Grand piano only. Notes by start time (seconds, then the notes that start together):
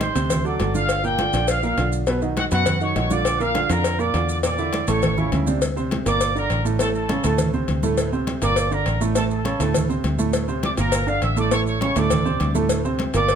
Already playing: D#3 D#4 G4
0.15 C3 C4 C5
0.45 F#3 F#4 A4
0.59 F#3 F#4 A4
0.74 D3 D4 F4
1.03 A#2 A#3 A#4
1.19 D3 D4 F4
1.34 D3 D4 F4
1.63 A#2 A#3 A#4
1.78 D3 D4 F4
2.07 B2 B3 B4
2.22 D#3 D#4 F#4
2.51 B2 B3 B4
2.81 D#3 D#4 F#4
2.96 D#3 D#4 F#4
3.10 D3 D4 F4
3.40 A#2 A#3 A#4
3.55 D3 D4 F4
3.69 D3 D4 F4
3.99 A#2 A#3 A#4
4.13 D3 D4 F4
4.43 A#2 A#3 A#4
4.58 D3 D4 E4
4.88 A2 A3 A4
5.17 C#3 C#4 E4
5.32 C#3 C#4 E4
5.47 C3 C4 D4
5.76 C3 C4 C5
6.06 A#2 A#3 A#4
6.35 D3 D4 D5
6.65 A2 A3 A4
6.80 A2 A3 A4
7.09 C#3 C#4 C#5
7.24 A2 A3 A4
7.53 C3 C4 C5
7.83 A2 A3 A4
8.12 C3 C4 C5
8.42 A#2 A#3 A#4
8.71 D3 D4 D5
9.01 A2 A3 A4
9.15 A2 A3 A4
9.45 C#3 C#4 C#5
9.59 A2 A3 A4
9.89 C3 C4 C5
10.18 A2 A3 A4
10.48 C3 C4 C5
10.77 A#2 A#3 A#4
11.07 D3 D4 D5
11.36 A2 A3 A4
11.51 A2 A3 A4
11.81 C#3 C#4 C#5
11.96 A2 A3 A4
12.25 C3 C4 C5
12.55 A2 A3 A4
12.85 C3 C4 C5
13.14 A#2 A#3 A#4